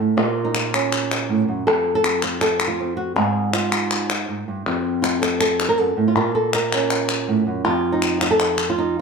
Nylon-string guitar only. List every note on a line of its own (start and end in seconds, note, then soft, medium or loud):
0.00 0.18 A2 soft
0.00 0.17 A4 medium
0.17 1.67 A#2 medium
0.17 0.53 F4 medium
0.45 0.73 D#4 medium
0.55 1.66 F4 medium
0.74 1.65 C#4 soft
1.29 1.48 A2 soft
1.48 1.67 F#2 medium
1.67 3.17 F2 medium
1.67 1.94 A4 medium
1.95 2.23 A4 medium
2.24 2.41 F4 medium
2.41 2.67 A4 medium
2.68 2.96 F4 medium
2.80 3.73 C4 soft
2.97 3.15 F#4 medium
3.16 4.28 G#2 medium
3.16 3.53 G#4 medium
3.53 4.10 F4 medium
3.73 4.66 D#4 medium
4.29 4.48 G#2 soft
4.48 4.66 G2 soft
4.66 5.79 F2 medium
4.66 6.18 C4 soft
4.66 5.02 F4 soft
5.02 5.21 F4 medium
5.22 5.39 A4 medium
5.41 5.68 A4 medium
5.69 5.78 A#4 medium
5.78 5.97 F#2 soft
5.78 6.06 A4 medium
5.97 6.16 A2 medium
6.08 6.15 F4 medium
6.15 7.65 A#2 medium
6.15 6.34 F4 medium
6.35 6.53 A4 medium
6.55 7.47 A#4 medium
6.74 7.64 C#4 soft
7.28 7.46 A2 medium
7.47 7.65 F#2 medium
7.65 9.01 F2 medium
7.65 8.20 F4 medium
7.92 8.59 D#4 medium
8.22 8.30 F4 medium
8.31 8.68 A4 medium
8.70 8.97 F4 medium
8.78 9.01 D#4 medium